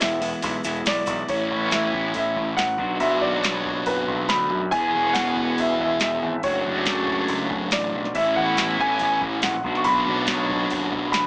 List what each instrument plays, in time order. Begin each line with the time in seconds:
0.00 picked electric bass E1, distorted electric guitar E3 G#3 B3 E4, upright piano E5, snare, open hi-hat, shaker
0.21 distorted electric guitar G#3 B3 E4, open hi-hat
0.32 shaker
0.42 picked electric bass B1, distorted electric guitar E3 G#3 B3 E4, clean electric guitar D4, kick, open hi-hat, shaker
0.64 picked electric bass E1, distorted electric guitar E3 G#3 B3 E4, open hi-hat, shaker
0.76 shaker
0.85 picked electric bass B1, distorted electric guitar E3 G#3 B3 E4, upright piano D5, snare, open hi-hat, shaker
1.06 picked electric bass B1, distorted electric guitar G#3 B3 E4, kick, open hi-hat, shaker
1.18 shaker
1.27 picked electric bass A1, distorted electric guitar A2 E3 A3 C#4 E4, upright piano C#5, kick, open hi-hat
1.31 clean electric guitar B3
1.51 picked electric bass A1
1.71 picked electric bass A1, upright piano E5, snare, open hi-hat
1.93 picked electric bass A1, kick
2.14 picked electric bass A1, upright piano E5, kick, open hi-hat
2.36 picked electric bass A1, kick
2.57 picked electric bass A1, upright piano F#5, snare, open hi-hat
2.77 picked electric bass B1, distorted electric guitar B2 F#3 B3 D4 F#4, kick
3.00 picked electric bass B1, upright piano E5, open hi-hat
3.21 picked electric bass B1, upright piano D5
3.44 picked electric bass B1, snare, open hi-hat
3.65 kick
3.86 picked electric bass F#1, upright piano B4, kick, open hi-hat
4.08 picked electric bass B1, kick
4.29 picked electric bass D2, upright piano B5, snare, open hi-hat
4.51 picked electric bass F#2
4.71 picked electric bass E1, distorted electric guitar E3 B3 E4 G#4, upright piano G#5, kick, open hi-hat
4.76 clean electric guitar C#4
4.95 picked electric bass E1
5.13 picked electric bass E1, upright piano F#5, snare, open hi-hat
5.36 picked electric bass E1, kick
5.58 picked electric bass E1, upright piano E5, kick, open hi-hat
5.79 picked electric bass E1, upright piano E5, kick
6.00 picked electric bass E1, upright piano E5, snare, open hi-hat
6.24 picked electric bass G#1
6.42 picked electric bass F#1, clean electric guitar C#3, distorted electric guitar F#3 A3 D4 F#4, upright piano C#5, kick, open hi-hat
6.66 picked electric bass F#1
6.86 picked electric bass F#1, snare, open hi-hat
7.07 kick
7.28 picked electric bass C#2, kick, open hi-hat
7.50 picked electric bass F#1, kick
7.71 picked electric bass A1, upright piano D5, snare, open hi-hat
7.94 picked electric bass B1
8.05 snare
8.14 picked electric bass A1, distorted electric guitar A2 E3 A3 C#4 E4, clean electric guitar B3, upright piano E5, kick, open hi-hat
8.36 picked electric bass A1, upright piano F#5
8.57 picked electric bass A1, snare, open hi-hat
8.78 picked electric bass A1, upright piano G#5, kick
8.99 picked electric bass A1, kick, open hi-hat
9.21 picked electric bass A1, kick
9.42 picked electric bass A#1, upright piano F#5, snare, open hi-hat
9.63 picked electric bass B1, distorted electric guitar B2 F#3 B3 D4 F#4, kick
9.75 upright piano C#6, snare
9.84 picked electric bass B1, upright piano B5, open hi-hat
10.08 picked electric bass B1
10.27 picked electric bass B1, snare, open hi-hat
10.49 kick
10.70 picked electric bass F#1, kick, open hi-hat
10.92 picked electric bass B1, kick
11.12 picked electric bass D2, upright piano B5, snare, open hi-hat